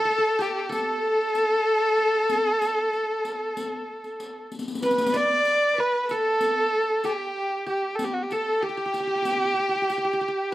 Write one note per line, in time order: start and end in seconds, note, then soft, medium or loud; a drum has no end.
0.00 0.43 A4 loud
0.00 0.68 A4 loud
0.05 0.10 A4 medium
0.10 0.18 A4 medium
0.18 0.69 A4 medium
0.39 1.64 G4 medium
0.39 0.72 G4 medium
0.39 riq soft
0.69 4.46 A4 medium
0.69 4.47 A4 medium
0.69 4.48 A4 loud
0.69 riq medium
1.35 riq medium
1.98 riq soft
2.29 riq medium
2.62 riq medium
2.93 riq soft
3.25 riq medium
3.57 riq medium
4.04 riq soft
4.20 riq soft
4.52 riq soft
4.59 riq medium
4.68 riq medium
4.75 riq medium
4.82 5.12 B4 medium
4.82 5.78 B4 medium
4.82 5.18 B4 medium
4.82 riq medium
4.91 riq medium
4.98 riq medium
5.06 riq medium
5.14 6.12 D5 medium
5.14 5.78 D5 medium
5.14 5.81 D5 loud
5.14 riq medium
5.45 riq soft
5.76 6.09 B4 medium
5.76 6.88 B4 medium
5.76 6.03 B4 medium
6.03 6.13 B4 medium
6.08 7.04 A4 medium
6.08 7.28 A4 medium
6.08 7.06 A4 loud
6.08 riq soft
6.41 riq medium
7.03 7.65 G4 medium
7.03 7.66 G4 medium
7.03 7.68 G4 medium
7.03 riq soft
7.66 7.92 G4 soft
7.66 8.62 G4 medium
7.66 7.97 G4 medium
7.66 riq soft
7.95 8.06 A4 medium
7.95 riq medium
8.04 8.15 G4 medium
8.14 8.24 F#4 medium
8.23 8.34 G4 medium
8.31 8.61 A4 medium
8.31 9.49 A4 medium
8.31 8.64 A4 medium
8.31 riq soft
8.62 8.69 G4 medium
8.62 10.52 G4 medium
8.62 10.54 G4 medium
8.69 8.77 G4 soft
8.77 8.85 G4 medium
8.86 8.93 G4 soft
8.94 9.00 G4 medium
8.94 riq soft
9.00 9.07 G4 soft
9.07 9.15 G4 soft
9.15 9.22 G4 soft
9.22 9.31 G4 soft
9.22 riq medium
9.31 9.37 G4 soft
9.37 9.45 G4 soft
9.45 9.53 G4 soft
9.54 9.59 G4 soft
9.59 9.68 G4 soft
9.69 9.75 G4 soft
9.76 9.81 G4 soft
9.82 9.89 G4 soft
9.90 9.97 G4 soft
9.90 riq soft
9.98 10.04 G4 medium
10.05 10.13 G4 soft
10.13 10.21 G4 medium
10.21 10.28 G4 medium
10.28 10.54 G4 medium